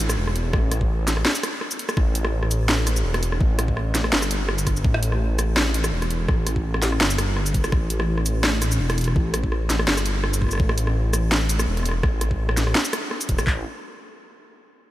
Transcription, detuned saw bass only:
0.00 0.17 A1 loud
0.17 0.52 E1 loud
0.53 1.06 A1 loud
1.07 1.24 A1 loud
1.97 3.04 A1 loud
3.04 3.40 E1 loud
3.41 3.94 A1 loud
3.95 4.11 A1 loud
4.13 4.84 G1 medium
4.85 5.91 A1 loud
5.92 6.27 E1 loud
6.28 6.81 A1 loud
6.82 6.99 A1 loud
7.00 7.71 G1 medium
7.72 8.79 A1 loud
8.80 9.15 E1 loud
9.16 9.69 A1 loud
9.70 9.86 A1 loud
9.88 10.58 G1 medium
10.60 11.66 A1 loud
11.67 12.02 E1 loud
12.03 12.56 A1 loud
12.57 12.74 A1 loud
13.29 13.40 E1 loud
13.39 13.46 C2 medium
13.47 13.64 A1 loud

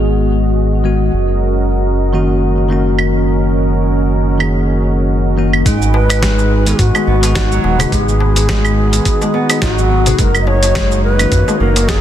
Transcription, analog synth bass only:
0.00 1.11 G#1 medium
1.13 5.63 F#1 medium
5.66 6.74 G#1 loud
6.79 6.91 G#2 medium
7.07 7.59 G#1 loud
7.64 7.86 D#1 medium
7.92 9.01 G#1 loud
9.62 10.14 G#1 medium
10.19 11.27 F#1 loud
11.32 11.44 F#2 medium
11.60 12.01 F#1 loud

